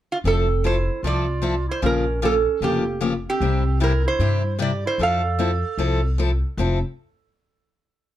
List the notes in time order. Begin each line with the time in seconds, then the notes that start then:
0.12 F4
0.24 F1 F3 C4 E4 A4
0.64 F3 C4 E4 A4 C5
1.03 C2 F3 C4 E4 F4 A4
1.07 D5
1.42 F3 C4 E4 A4
1.68 E4 C5
1.82 A#1 C#3 F3 A#3 C#4 F4 G4 A#4
2.22 C#3 F3 A#3 C#4 F4 G4 A4
2.61 F1 C#3 F3 A#3 F4 G4
3.01 C#3 F3 A#3 F4 G4
3.27 C4 G4
3.40 C2 C3 G3 C4 E4 G4
3.80 C3 G3 C4 E4 G4 A#4
4.05 E4 C5
4.19 G2 C3 G3 C4 E4 G4
4.59 C3 G3 C4 E4 G4 D5
4.86 E4 C5
4.98 F2 F3 C4 E4 A4
5.03 F5
5.39 F3 C4 E4 A4
5.78 C2 F3 C4 E4 A4
6.18 F3 C4 E4 A4
6.57 F1 F3 C4 E4 A4